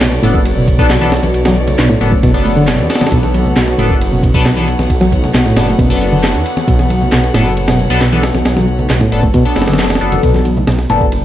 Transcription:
Already playing: synth stab B3 D4 A4, string section B3 F#4 A4 C#5 D5
0.01 detuned saw bass B1, reed electric piano B2, snare, clap, ride, shaker
0.12 snare
0.23 detuned saw bass F#1, reed electric piano A2, synth stab B3 D4 A4, ride, shaker
0.34 kick, shaker
0.45 ride, shaker
0.57 reed electric piano B2
0.68 kick, ride, shaker
0.79 detuned saw bass B1, synth stab B3 D4 A4, kick, shaker
0.90 reed electric piano B2, snare, clap, ride, shaker
1.01 reed electric piano E3, synth stab B3 D4 A4
1.12 snare, ride, shaker
1.23 detuned saw bass B1, ride, high conga, shaker
1.34 detuned saw bass B1, ride, shaker
1.45 reed electric piano F#3, snare, ride, high conga
1.56 ride, high conga, shaker
1.68 ride, low conga, shaker
1.79 detuned saw bass B1, reed electric piano B2, snare, clap, ride, shaker
1.90 reed electric piano A2, snare
2.01 detuned saw bass F#1, synth stab B3 D4 A4, snare, ride, shaker
2.12 reed electric piano A3, kick, shaker
2.23 detuned saw bass F#1, reed electric piano B2, kick, ride, shaker
2.34 synth stab B3 D4 A4
2.45 reed electric piano A3, ride, shaker
2.56 reed electric piano D3, shaker
2.67 reed electric piano B2, snare, clap, ride, shaker
2.79 detuned saw bass E2, ride
2.90 synth stab B3 D4 A4, snare, ride, shaker
2.95 snare, ride
3.01 snare, ride, high conga, low conga, shaker
3.07 snare, ride
3.12 detuned saw bass B1, reed electric piano B2, string section F#5, kick, ride, shaker
3.23 snare, high conga
3.34 reed electric piano F#3, ride, high conga, shaker
3.45 low conga, shaker
3.56 detuned saw bass B1, reed electric piano B2, snare, clap, ride, shaker
3.68 snare
3.78 detuned saw bass F#1, reed electric piano A2, synth stab B3 D4 A4, ride, shaker
3.90 kick, shaker
4.01 ride, shaker
4.12 reed electric piano B2
4.23 kick, ride, shaker
4.34 detuned saw bass B1, synth stab B3 D4 A4, kick, shaker
4.45 reed electric piano B2, snare, clap, ride, shaker
4.57 reed electric piano E3, synth stab B3 D4 A4
4.68 ride, shaker
4.79 detuned saw bass B1, snare, high conga, shaker
4.90 detuned saw bass B1, kick, ride, shaker
5.01 reed electric piano F#3, snare, high conga
5.12 kick, ride, high conga, shaker
5.23 snare, low conga, shaker
5.34 detuned saw bass B1, reed electric piano B2, snare, clap, ride, shaker
5.46 reed electric piano A2, snare
5.56 detuned saw bass F#1, synth stab B3 D4 A4, snare, ride, shaker
5.68 reed electric piano A3, snare, shaker
5.79 detuned saw bass F#1, reed electric piano B2, kick, ride, shaker
5.90 synth stab B3 D4 A4
6.01 ride, shaker
6.12 reed electric piano D3, shaker
6.23 snare, clap, ride, shaker
6.35 detuned saw bass E2, ride
6.46 ride, shaker
6.57 snare, high conga, shaker
6.68 detuned saw bass B1, reed electric piano B2, kick, ride, shaker
6.79 snare, high conga
6.90 reed electric piano F#3, ride, high conga, shaker
7.01 low conga, shaker
7.12 detuned saw bass B1, reed electric piano B2, snare, clap, ride, shaker
7.24 snare
7.34 detuned saw bass F#1, reed electric piano A2, synth stab B3 D4 A4, snare, ride, shaker
7.46 shaker
7.56 ride, shaker
7.68 reed electric piano B2, snare, ride
7.79 shaker
7.90 detuned saw bass B1, synth stab B3 D4 A4, ride, shaker
8.01 reed electric piano B2, snare, clap, ride, shaker
8.12 reed electric piano E3, synth stab B3 D4 A4
8.23 snare, ride, shaker
8.34 detuned saw bass B1, snare, high conga, shaker
8.45 detuned saw bass B1, snare, ride, shaker
8.57 reed electric piano F#3, snare, high conga
8.67 high conga, shaker
8.79 low conga, shaker
8.89 detuned saw bass B1, reed electric piano B2, snare, clap, ride, shaker
9.01 reed electric piano A2, snare
9.12 detuned saw bass F#1, synth stab B3 D4 A4, ride, shaker
9.23 reed electric piano A3, kick, shaker
9.34 reed electric piano B2, kick, ride, shaker
9.45 synth stab B3 D4 A4
9.56 detuned saw bass F#1, snare, ride, shaker
9.62 snare, ride
9.67 detuned saw bass F#1, reed electric piano D3, snare, ride, shaker
9.73 snare, ride
9.79 snare, clap, ride, shaker
9.84 snare, ride
9.90 snare, ride, high conga
9.95 snare, ride
10.01 detuned saw bass F#1, synth stab B3 D4 A4, ride, shaker
10.12 ride, high conga, low conga, shaker
10.23 detuned saw bass B1, reed electric piano B2, kick, ride, shaker
10.34 snare, high conga, shaker
10.45 reed electric piano F#3, ride, high conga, shaker
10.56 low conga, shaker
10.67 detuned saw bass B1, reed electric piano B2, snare, ride, shaker
10.79 snare, shaker
10.90 detuned saw bass F#1, reed electric piano A2, synth stab B3 D4 A4, ride, shaker
11.01 kick, shaker
11.12 ride, shaker

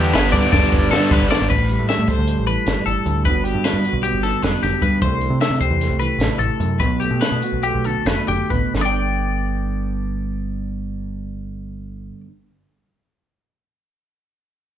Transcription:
Already playing: picked electric bass E2, overdriven electric guitar G2 D3 G3 B3 D4, clean electric guitar G4
0.13 picked electric bass G1, overdriven electric guitar D3 G3 B3 D4, clean electric guitar B4, snare, ride
0.32 picked electric bass G2, overdriven electric guitar G3 B3 D4, clean electric guitar D5, kick
0.52 picked electric bass F#1, overdriven electric guitar G2 D3 G3 B3 D4, clean electric guitar D5, kick, snare
0.72 picked electric bass F#1, kick
0.91 picked electric bass G2, overdriven electric guitar D3 G3 B3 D4, clean electric guitar A4, snare
1.11 overdriven electric guitar G3 B3 D4, clean electric guitar B4, kick
1.21 picked electric bass G1
1.30 overdriven electric guitar G2 D3 G3 B3 D4, clean electric guitar D5, snare
1.41 picked electric bass G#1
1.49 picked electric bass A1, clean electric guitar A2 B4, kick, crash
1.69 clean electric guitar G3, closed hi-hat
1.79 picked electric bass A2
1.89 clean electric guitar E5, snare, closed hi-hat
1.99 picked electric bass A2
2.08 clean electric guitar A4 C5, kick, snare, closed hi-hat
2.18 picked electric bass D2
2.28 clean electric guitar G3, closed hi-hat
2.38 picked electric bass A1
2.47 clean electric guitar E3 B4, closed hi-hat
2.66 picked electric bass G1, clean electric guitar G3, snare, closed hi-hat
2.86 picked electric bass G1, clean electric guitar E3 A4, closed hi-hat
3.06 picked electric bass D2, clean electric guitar A2, closed hi-hat
3.25 picked electric bass G1, clean electric guitar G2 D3 B3 D4 F#4 B4, kick, closed hi-hat
3.44 clean electric guitar B3 G4, closed hi-hat
3.54 picked electric bass G2
3.64 clean electric guitar D4 B4, snare, closed hi-hat
3.73 picked electric bass G2
3.84 clean electric guitar F#4, closed hi-hat
3.93 picked electric bass B1
4.03 clean electric guitar B3 G4, closed hi-hat
4.13 picked electric bass G1
4.23 clean electric guitar D3 A4, snare, closed hi-hat
4.43 picked electric bass F#1, clean electric guitar B3 B4, snare, closed hi-hat
4.63 picked electric bass F#1, clean electric guitar D3 G4, snare, closed hi-hat
4.82 clean electric guitar G2 B4, picked electric bass G2, kick, closed hi-hat
5.02 picked electric bass C2, clean electric guitar C3 E3 A3 D4 E4 C5, kick, closed hi-hat
5.21 clean electric guitar A3, closed hi-hat
5.30 picked electric bass C3
5.41 clean electric guitar D4 E5, snare, closed hi-hat
5.50 picked electric bass C3
5.61 clean electric guitar G4 C5, kick, closed hi-hat
5.70 picked electric bass E2
5.81 clean electric guitar A3, snare, closed hi-hat
5.90 picked electric bass C2
6.00 clean electric guitar E3 B4, closed hi-hat
6.19 picked electric bass A1, clean electric guitar A3, snare, closed hi-hat
6.39 picked electric bass A1, clean electric guitar E3 A4, closed hi-hat
6.60 picked electric bass F#2, clean electric guitar C3, closed hi-hat
6.80 picked electric bass B1, clean electric guitar B2 B4, kick, closed hi-hat
7.00 clean electric guitar A3 G4, closed hi-hat
7.11 picked electric bass B2
7.21 clean electric guitar B3 B4, snare, closed hi-hat
7.32 picked electric bass B2
7.42 clean electric guitar F#4, closed hi-hat
7.53 picked electric bass B1
7.63 clean electric guitar A3 G4, closed hi-hat
7.74 picked electric bass B1
7.84 clean electric guitar D3 A4, closed hi-hat
8.06 picked electric bass F#1, clean electric guitar A3 B4, snare, closed hi-hat
8.28 picked electric bass F#1, clean electric guitar D3 G4, closed hi-hat
8.50 picked electric bass A1, clean electric guitar B2 B4, kick, closed hi-hat
8.74 picked electric bass G1, clean electric guitar G2 D3 B4, snare
8.78 clean electric guitar B3 D4 D5
8.85 clean electric guitar G5

